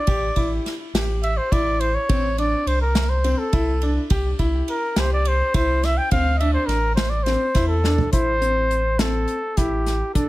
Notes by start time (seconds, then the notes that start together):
Already playing: D5
0.07 A1 G4, kick, ride
0.36 A1 E4, kick, ride
0.66 snare, ride
0.93 A1 G4, snare, ride
1.23 E5, ride
1.37 C5
1.52 A1 E4 D5, kick, ride
1.81 C5, ride
1.95 C#5
2.09 A1 C4, kick, ride
2.38 D4 D5, ride
2.66 C2 C5, ride
2.82 A#4
2.95 snare, ride
3.10 C5
3.24 C4, ride
3.38 A4
3.53 C2 E4, kick, ride
3.82 D4, ride
4.10 C2 G4, kick, ride
4.39 C2 E4, kick, ride
4.68 A#4, ride
4.96 C2 G4 C5, snare, ride
5.13 D5
5.25 C5, ride
5.54 C2 E4 C5, kick, ride
5.83 E5, snare, ride
5.98 G5
6.11 D2 C4 F5, kick, ride
6.36 D#5 E5
6.40 D4, ride
6.54 C5
6.67 A1 A#4, snare, ride
6.96 C5, snare, ride
7.10 D5
7.24 C4 C5, snare, ride
7.54 E2 E4, kick, snare, ride
7.68 A4
7.84 D4, snare
7.98 floor tom
8.13 A1 E4 C5, kick, closed hi-hat
8.41 C4, closed hi-hat
8.71 closed hi-hat
8.99 C4 A4, snare, closed hi-hat
9.28 closed hi-hat
9.57 A1 E4 G4, kick, snare, closed hi-hat
9.86 snare, closed hi-hat
10.15 A1 D4 A4, kick, closed hi-hat